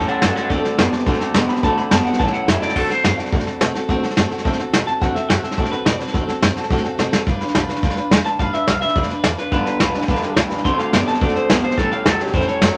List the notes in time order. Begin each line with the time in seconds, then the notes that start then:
Already playing: A2 E3
0.00 snare
0.07 G3 C#4 G4 A4 F#5, snare
0.21 F#2 A2 F#3 G3 C#4 G4 A4 F#5, snare, hi-hat pedal
0.35 G3 C#4 G4 A4 F#5, snare
0.50 D2 D3 A3 C4 F#4 A4 D5, kick, snare
0.63 C4 F#4 A4, muted upright bass stroke, snare
0.77 F#2 D3 A3 B3 C4 F#4 A4, snare, hi-hat pedal
0.92 C4 F#4 A4, snare
0.99 snare
1.06 A2 D3 A3 C4 F#4 A4, kick, snare
1.13 snare
1.20 C4 F#4 A4, muted upright bass stroke, snare
1.34 B2 D3 A3 B3 C4 F#4 A4, snare, hi-hat pedal
1.49 C4 F#4 A4 B5, muted upright bass stroke, snare
1.56 snare
1.63 D2 D3 A3 C4 F#4 A4 A5, kick, snare
1.77 C4 F#4 A4 B5, muted upright bass stroke, snare
1.91 F#2 D3 A3 B3 C4 F#4 A4 A5, snare, hi-hat pedal
2.05 C4 F#4 A4 F#5, snare
2.13 snare
2.19 A1 A2 E3 G3 C#4 E4 A4 A5, kick, snare
2.27 snare
2.32 G3 C#4 E4 A4 F#5, muted upright bass stroke, snare
2.46 F#2 A2 F#3 G3 C#4 E4 A4 E5, snare, hi-hat pedal
2.60 G3 C#4 E4 A4 D5, snare
2.69 snare
2.74 D2 D3 A3 C4 F#4 A4, kick, snare, crash
2.89 C4 F#4 A4 C5, muted upright bass stroke, snare
3.03 F#2 A3 C4 F#4 A4 F5, snare, hi-hat pedal
3.18 C4 F#4 A4 D5, muted upright bass stroke, snare
3.26 snare
3.31 A2 D3 A3 C4 F#4 A4, kick, snare
3.40 snare
3.46 C4 F#4 A4, muted upright bass stroke, snare
3.60 B2 A3 C4 F#4 A4, snare, hi-hat pedal
3.74 C4 F#4 A4, muted upright bass stroke, snare
3.88 D2 D3 A3 C4 F#4 A4, kick, snare
4.03 C4 F#4 A4, muted upright bass stroke, snare
4.10 snare
4.16 F#2 A3 C4 F#4 A4, snare, hi-hat pedal
4.30 C4 F#4 A4, muted upright bass stroke, snare
4.38 snare
4.44 A2 D3 A3 C4 F#4 A4, kick, snare
4.53 snare
4.58 C4 F#4 A4, muted upright bass stroke, snare
4.73 B2 A3 C4 F#4 A4, snare, hi-hat pedal
4.87 C4 F#4 A4 A5, muted upright bass stroke, snare
5.01 D2 D3 A3 C4 F#4 A4 F#5, kick, snare
5.15 C4 F#4 A4 E5, muted upright bass stroke, snare
5.29 F#2 A3 C4 F#4 F#5, snare, hi-hat pedal
5.33 A4
5.43 C4 F#4 A4 E5, muted upright bass stroke, snare
5.51 snare
5.57 A2 D3 A3 C4 F#4 A4 D5, kick, snare
5.65 snare
5.71 C4 F#4 A4 B4, muted upright bass stroke, snare
5.85 B2 A3 C4 F#4 A4 D5, snare, hi-hat pedal
5.99 C4 F#4 A4 B4, muted upright bass stroke, snare
6.07 snare
6.13 D2 D3 A3 C4 F#4 A4, kick, snare
6.27 C4 F#4 A4, muted upright bass stroke, snare
6.41 F#2 A3 C4 F#4 A4, snare, hi-hat pedal
6.55 C4 F#4 A4, muted upright bass stroke, snare
6.63 snare
6.70 A2 D3 A3 C4 F#4 A4, kick, snare
6.77 snare
6.84 C4 F#4 A4, muted upright bass stroke, snare
6.98 B2 A3 C4 F#4 A4, snare, hi-hat pedal
7.11 C4 F#4 A4, muted upright bass stroke, snare
7.26 G1 G3 D4 F4 B4, kick, snare
7.41 D4 F4 B4, muted upright bass stroke, snare
7.48 snare
7.55 B1 G3 D4 F4 B4, snare, hi-hat pedal
7.69 D4 F4 B4, muted upright bass stroke, snare
7.76 snare
7.83 D2 G3 D4 F4 B4, kick, snare
7.90 snare
7.96 D4 F4 B4, muted upright bass stroke, snare
8.11 E2 G3 D4 F4 B4, snare, hi-hat pedal
8.24 D4 F4 B4 A5, snare
8.39 G1 G3 D4 F4 B4 F5, kick, snare
8.53 D4 F4 B4 E5, snare
8.67 B1 G3 D4 F4 B4 F5, snare, hi-hat pedal
8.81 D4 F4 B4 E5, muted upright bass stroke, snare
8.89 snare
8.95 D2 G3 D4 F4 B4 D5, kick, snare
9.03 snare
9.10 D4 F4 B4, muted upright bass stroke, snare
9.23 E2 G3 D4 F4 B4 D5, snare, hi-hat pedal
9.37 D4 F4 B4, snare
9.52 G1 G2 D3 G3 D4 F4 B4, kick, snare
9.65 D4 F4 B4, muted upright bass stroke, snare
9.79 B1 G2 E3 G3 D4 F4 B4, snare, hi-hat pedal
9.93 D4 F4 B4, muted upright bass stroke, snare
10.01 snare
10.08 D2 G2 D3 G3 D4 F4 B4, kick, snare
10.16 snare
10.21 D4 F4 B4, muted upright bass stroke, snare
10.36 C#2 G2 E3 G3 D4 F4 B4, snare, hi-hat pedal
10.50 D4 F4 B4, muted upright bass stroke, snare
10.58 snare
10.64 D2 D3 A3 C4 F#4 A4 C6, kick, snare
10.78 C4 F#4 A4 F5, muted upright bass stroke, snare
10.92 F#2 D3 A3 B3 C4 F#4 A4 D5, snare, hi-hat pedal
11.06 C4 F#4 A4 A5, muted upright bass stroke, snare
11.14 snare
11.20 A2 D3 A3 C4 F#4 A4 D5, kick, snare
11.29 snare
11.34 C4 F#4 A4 C5, muted upright bass stroke, snare
11.48 B1 D3 A3 B3 C4 F#4 A4 F5, snare, hi-hat pedal
11.62 C4 F#4 A4 C5, muted upright bass stroke, snare
11.71 snare
11.77 A1 A2 E3 G3 C#4 G4 A4, kick, snare
11.91 G3 C#4 G4 A4 F5, muted upright bass stroke, snare
12.05 C#2 A2 F#3 G3 C#4 G4 A4, snare, hi-hat pedal
12.19 G3 C#4 G4 A4, snare
12.27 snare
12.33 E2 A2 E3 G3 C#4 G4 A4 C5, kick, snare
12.41 snare
12.47 G3 C#4 G4 A4 C#5, snare
12.61 F#2 A2 F#3 G3 A4, snare, hi-hat pedal
12.74 A4